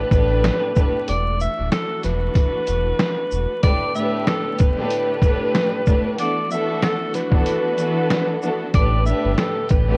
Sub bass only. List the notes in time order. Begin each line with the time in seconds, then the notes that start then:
0.11 A1
1.09 E1
1.59 D1
2.04 E1
2.68 E1
3.32 E1
8.75 A1
9.25 G1
9.71 A1